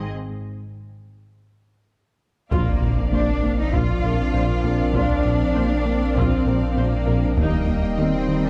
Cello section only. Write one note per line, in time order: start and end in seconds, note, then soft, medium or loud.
2.52 3.09 A#3 medium
3.13 3.58 D4 medium
3.59 3.73 D#4 medium
3.74 4.95 F4 medium
4.94 6.13 D4 medium
6.16 6.77 C4 medium
6.77 7.36 A#3 medium
7.38 7.97 A#3 medium
7.98 8.43 C4 medium
8.44 8.50 D4 medium